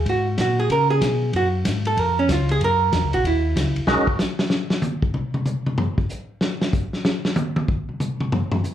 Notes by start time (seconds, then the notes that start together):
0.06 G#2 F#4, kick, ride
0.38 A#2 F#4, kick, snare, hi-hat pedal, ride
0.60 G#4
0.70 C#3 A#4, kick, ride
0.90 G#4
1.01 B2, kick, snare, hi-hat pedal, ride
1.33 F#2 F#4, kick, ride
1.65 G#2, kick, snare, hi-hat pedal, ride
1.85 A4, ride
1.97 F2 A#4, kick, ride
2.19 C#4
2.28 C#2 F4, kick, snare, hi-hat pedal, ride
2.49 G#4, ride
2.60 F#2 A#4, kick, ride
2.92 E2, kick, snare, hi-hat pedal, ride
3.04 C#2
3.13 A#1 F#4, ride
3.24 D#2 E4, kick, ride
3.56 C#2, kick, snare, hi-hat pedal, ride
3.76 C#2, ride
3.87 B1 G#3 C#4 D#4 F#4 A#4, snare
4.07 kick
4.19 snare, hi-hat pedal
4.39 snare
4.50 snare
4.70 snare
4.82 hi-hat pedal, high tom
5.02 kick
5.14 mid tom
5.34 mid tom
5.46 hi-hat pedal, mid tom
5.66 mid tom
5.78 floor tom
5.98 kick
6.09 hi-hat pedal
6.41 snare
6.61 snare
6.73 kick, hi-hat pedal
6.93 snare
7.05 snare
7.25 snare
7.36 hi-hat pedal, high tom
7.56 high tom
7.68 kick
7.89 mid tom
8.00 hi-hat pedal, mid tom
8.20 mid tom
8.32 floor tom
8.52 floor tom
8.64 floor tom, hi-hat pedal